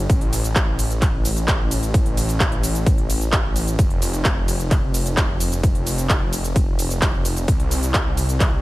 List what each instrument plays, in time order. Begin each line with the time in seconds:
0.10 detuned saw bass A1, kick, closed hi-hat, ride, cabasa
0.21 closed hi-hat
0.33 open hi-hat, ride, cabasa
0.44 closed hi-hat, cabasa
0.56 kick, clap, closed hi-hat, ride, cabasa
0.79 open hi-hat, ride, cabasa
0.90 closed hi-hat, cabasa
1.02 kick, clap, closed hi-hat, ride, cabasa
1.25 open hi-hat, ride, cabasa
1.37 closed hi-hat, cabasa
1.48 kick, clap, closed hi-hat, ride, cabasa
1.71 open hi-hat, ride, cabasa
1.83 closed hi-hat, cabasa
1.94 kick, closed hi-hat, ride, cabasa
2.06 closed hi-hat
2.17 open hi-hat, ride, cabasa
2.29 closed hi-hat, cabasa
2.40 kick, clap, closed hi-hat, ride, cabasa
2.52 closed hi-hat
2.63 open hi-hat, ride, cabasa
2.75 closed hi-hat, cabasa
2.86 kick, closed hi-hat, ride, cabasa
2.98 closed hi-hat
3.10 open hi-hat, ride, cabasa
3.21 closed hi-hat, cabasa
3.33 kick, clap, closed hi-hat, ride, cabasa
3.56 open hi-hat, ride, cabasa
3.67 closed hi-hat, cabasa
3.79 detuned saw bass F1, kick, closed hi-hat, ride, cabasa
3.90 closed hi-hat
4.02 open hi-hat, ride, cabasa
4.14 closed hi-hat, cabasa
4.25 kick, clap, closed hi-hat, ride, cabasa
4.48 open hi-hat, ride, cabasa
4.60 closed hi-hat, cabasa
4.71 kick, clap, closed hi-hat, ride, cabasa
4.94 open hi-hat, ride, cabasa
5.06 closed hi-hat, cabasa
5.17 kick, clap, closed hi-hat, ride, cabasa
5.40 open hi-hat, ride, cabasa
5.52 closed hi-hat, cabasa
5.63 kick, closed hi-hat, ride, cabasa
5.75 closed hi-hat
5.87 open hi-hat, ride, cabasa
5.98 closed hi-hat, cabasa
6.10 kick, clap, closed hi-hat, ride, cabasa
6.33 open hi-hat, ride, cabasa
6.44 closed hi-hat, cabasa
6.56 kick, closed hi-hat, ride, cabasa
6.79 open hi-hat, ride, cabasa
6.90 closed hi-hat, cabasa
7.02 kick, clap, closed hi-hat, ride, cabasa
7.25 open hi-hat, ride, cabasa
7.37 closed hi-hat, cabasa
7.48 detuned saw bass C2, kick, closed hi-hat, ride, cabasa
7.60 closed hi-hat
7.71 open hi-hat, ride, cabasa
7.83 closed hi-hat, cabasa
7.94 kick, clap, closed hi-hat, ride, cabasa
8.17 open hi-hat, ride, cabasa
8.29 closed hi-hat, cabasa
8.40 kick, clap, closed hi-hat, ride, cabasa